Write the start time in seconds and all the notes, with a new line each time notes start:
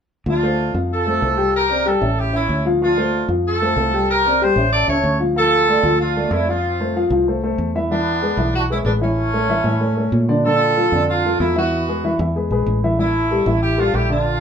0.26 D2 F3 D4 F4 F5
0.43 A3 A4 C5
0.74 F2 F3 F4 F5
0.92 F4 A4
1.06 A3 A4 C5
1.21 C2 A3 A4 C5
1.37 G3 G4 G5
1.55 G4 A#4
1.70 C4 C5 D5
1.85 G3 D4 G4 A4 G5
2.01 A1 C#4 C#5 E5
2.19 E4 G4
2.33 C#4 E4 C#5 E5
2.49 D2
2.65 F3 F4 F5
2.82 F3 D4 F4 F5
2.97 A3 A4 C5
3.28 F2 F3 F4 F5
3.47 F4 A4
3.61 A3 A4 C5
3.76 C2 A3 A4 C5
3.93 G3 G4 G5
4.10 G4 A#4
4.26 C4 C5 D5
4.42 G3 G4 C5 G5
4.56 A1 C#4 C#5 E5
4.73 A4 D5
4.88 C#2 C#4 A4 C#5 E5
5.04 D2
5.20 F3 F4 F5
5.36 F3 F4 A4 F5
5.68 A3 A4 D5
5.83 D2 F3 F4
6.01 D4 F4
6.16 A3 A4 D5
6.31 F2 A3 E4 A4 D5
6.48 F3 C4 F4 F5
6.80 A3 A4 C5
6.96 F3 F4 F5
7.10 C2 F3 F4 F5
7.28 A3 A4 C5
7.43 A3 A4 C5
7.58 E2
7.75 E3 E4 E5
7.91 E3 B3 D4 E4 E5
8.22 G#3 G#4 B4
8.37 B1 E3 E4 E5
8.55 D4 F#4
8.70 G#3 C#4 E4 G#4 B4
8.85 A1 G#3 B3 D4 G#4 B4
9.01 E3 A3 C#4 E4 E5
9.34 A3 A4 C#5
9.49 E3 E4 E5
9.64 A2 E3 E4 E5
9.81 A3 A4 C#5
9.97 A3 A4 C#5
10.12 A#2
10.28 D3 D4 D5
10.44 D3 D4 F4 A4 D5
10.77 F3 F4 A4
10.92 F2 D3 D4 D5
11.09 D4 F4
11.25 F3 F4 A4
11.40 E2 F3 A#3 E4 F4 A4
11.56 E3 B3 E4 F#4 E5
11.88 G#3 G#4 B4
12.04 E3 E4 E5
12.19 E2 E3 E4 E5
12.35 G#3 G#4 B4
12.51 A#1 G#3 G#4 B4
12.66 A1
12.84 E3 E4 E5
12.99 E3 A3 E4 E5
13.31 G3 G4 A4
13.46 A1 E3 E4 E5
13.62 E4 G4
13.78 G3 D4 F4 G4 A4
13.93 A#1 G3 E4 G4 A4
14.09 D3 D4 F4 D5